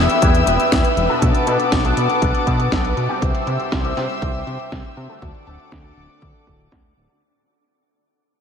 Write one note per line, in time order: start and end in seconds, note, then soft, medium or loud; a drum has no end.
0.00 0.19 E3 medium
0.00 0.19 B3 medium
0.00 0.19 E4 medium
0.00 0.19 G4 medium
0.00 0.19 B4 loud
0.00 3.18 B4 medium
0.00 1.20 E5 medium
0.00 1.20 G5 medium
0.00 1.20 E6 medium
0.10 closed hi-hat soft
0.21 0.44 E2 medium
0.21 0.44 E3 loud
0.21 0.44 B3 medium
0.21 0.44 E4 medium
0.21 0.44 G4 medium
0.21 0.44 B4 medium
0.21 kick loud
0.21 closed hi-hat medium
0.35 closed hi-hat soft
0.46 0.58 E1 medium
0.46 0.69 E3 medium
0.46 0.69 B3 medium
0.46 0.69 E4 medium
0.46 0.69 G4 medium
0.46 0.69 B4 medium
0.46 closed hi-hat medium
0.60 closed hi-hat soft
0.72 0.83 E2 medium
0.72 0.88 E3 medium
0.72 0.88 B3 medium
0.72 0.88 E4 medium
0.72 0.88 G4 medium
0.72 0.88 B4 medium
0.72 kick loud
0.72 snare loud
0.72 closed hi-hat medium
0.85 closed hi-hat soft
0.97 1.08 E1 loud
0.97 closed hi-hat soft
1.09 1.44 B2 medium
1.09 1.44 B3 medium
1.09 1.44 D4 medium
1.09 1.44 F#4 medium
1.09 1.44 A4 medium
1.22 1.33 B1 loud
1.22 3.20 F#5 medium
1.22 3.20 A5 medium
1.22 3.20 D6 medium
1.22 kick loud
1.22 closed hi-hat medium
1.35 closed hi-hat soft
1.46 1.58 B2 medium
1.46 1.82 B2 medium
1.46 1.82 B3 medium
1.46 1.82 D4 medium
1.46 1.82 F#4 medium
1.46 1.82 A4 medium
1.46 closed hi-hat medium
1.60 closed hi-hat soft
1.72 1.94 B1 loud
1.72 kick loud
1.72 snare loud
1.72 closed hi-hat medium
1.84 2.19 B2 medium
1.84 2.19 B3 medium
1.84 2.19 D4 medium
1.84 2.19 F#4 medium
1.84 2.19 A4 loud
1.84 closed hi-hat soft
1.97 2.08 B2 medium
1.97 closed hi-hat medium
2.10 closed hi-hat soft
2.22 2.33 B1 medium
2.22 2.44 B2 medium
2.22 2.44 B3 medium
2.22 2.44 D4 medium
2.22 2.44 F#4 medium
2.22 2.44 A4 medium
2.22 kick loud
2.22 closed hi-hat medium
2.35 closed hi-hat soft
2.47 2.69 B2 loud
2.47 2.69 B2 medium
2.47 2.69 B3 medium
2.47 2.69 D4 medium
2.47 2.69 F#4 medium
2.47 2.69 A4 medium
2.47 kick medium
2.47 closed hi-hat medium
2.60 closed hi-hat soft
2.71 2.94 B1 loud
2.71 2.88 B2 medium
2.71 2.88 B3 medium
2.71 2.88 D4 medium
2.71 2.88 F#4 medium
2.71 2.88 A4 medium
2.71 kick loud
2.71 snare loud
2.71 closed hi-hat medium
2.85 closed hi-hat soft
2.97 3.08 B2 medium
2.97 closed hi-hat soft
3.09 3.44 C3 medium
3.09 3.44 G3 medium
3.09 3.44 C4 medium
3.09 3.44 E4 medium
3.09 3.44 G4 medium
3.22 3.33 C2 medium
3.22 5.20 C5 medium
3.22 5.20 E5 medium
3.22 5.20 G5 medium
3.22 5.20 E6 medium
3.22 kick loud
3.22 closed hi-hat medium
3.35 closed hi-hat soft
3.46 3.58 C3 medium
3.46 3.82 C3 medium
3.46 3.82 G3 medium
3.46 3.82 C4 medium
3.46 3.82 E4 medium
3.46 3.82 G4 medium
3.46 closed hi-hat medium
3.60 closed hi-hat soft
3.72 3.94 C2 loud
3.72 kick loud
3.72 snare loud
3.72 closed hi-hat medium
3.84 4.19 C3 medium
3.84 4.19 G3 medium
3.84 4.19 C4 medium
3.84 4.19 E4 medium
3.84 4.19 G4 loud
3.84 closed hi-hat soft
3.97 4.08 C3 medium
3.97 snare medium
3.97 closed hi-hat medium
4.10 closed hi-hat soft
4.22 4.44 C2 medium
4.22 4.44 C3 medium
4.22 4.44 G3 medium
4.22 4.44 C4 medium
4.22 4.44 E4 medium
4.22 4.44 G4 medium
4.22 kick loud
4.22 closed hi-hat medium
4.35 closed hi-hat soft
4.47 4.58 C3 medium
4.47 4.69 C3 medium
4.47 4.69 G3 medium
4.47 4.69 C4 medium
4.47 4.69 E4 medium
4.47 4.69 G4 medium
4.47 closed hi-hat medium
4.60 closed hi-hat soft
4.72 4.83 C2 medium
4.72 4.88 C3 medium
4.72 4.88 G3 medium
4.72 4.88 C4 medium
4.72 4.88 E4 medium
4.72 4.88 G4 medium
4.72 kick loud
4.72 snare loud
4.72 closed hi-hat medium
4.85 closed hi-hat soft
4.97 5.08 C3 loud
4.97 closed hi-hat soft
5.09 5.44 D3 medium
5.09 5.44 A3 medium
5.09 5.44 D4 medium
5.09 5.44 F#4 medium
5.09 5.44 A4 medium
5.22 5.33 D2 medium
5.22 7.20 A4 medium
5.22 7.20 D5 medium
5.22 7.20 F#5 medium
5.22 7.20 D6 medium
5.22 kick loud
5.22 closed hi-hat medium
5.35 closed hi-hat soft
5.47 5.58 D1 medium
5.47 5.82 D3 medium
5.47 5.82 A3 medium
5.47 5.82 D4 medium
5.47 5.82 F#4 medium
5.47 5.82 A4 medium
5.47 closed hi-hat medium
5.60 closed hi-hat soft
5.72 5.94 D2 loud
5.72 kick loud
5.72 snare loud
5.72 closed hi-hat medium
5.84 6.19 D3 medium
5.84 6.19 A3 medium
5.84 6.19 D4 medium
5.84 6.19 F#4 medium
5.84 6.19 A4 loud
5.84 closed hi-hat soft
5.97 6.08 D1 medium
5.97 closed hi-hat medium
6.10 closed hi-hat soft
6.22 6.33 D2 medium
6.22 6.44 D3 medium
6.22 6.44 A3 medium
6.22 6.44 D4 medium
6.22 6.44 F#4 medium
6.22 6.44 A4 medium
6.22 kick loud
6.22 closed hi-hat medium
6.35 closed hi-hat soft
6.46 6.69 D1 loud
6.46 6.69 D3 medium
6.46 6.69 A3 medium
6.46 6.69 D4 medium
6.46 6.69 F#4 medium
6.46 6.69 A4 medium
6.46 kick medium
6.46 closed hi-hat medium
6.60 closed hi-hat soft
6.71 6.94 D2 medium
6.71 6.88 D3 medium
6.71 6.88 A3 medium
6.71 6.88 D4 medium
6.71 6.88 F#4 medium
6.71 6.88 A4 medium
6.71 kick loud
6.71 snare loud
6.71 closed hi-hat medium
6.97 7.08 D1 medium
6.97 closed hi-hat soft
7.09 7.21 D3 medium
7.09 7.21 A3 medium
7.09 7.21 D4 medium
7.09 7.21 F#4 medium
7.09 7.21 A4 medium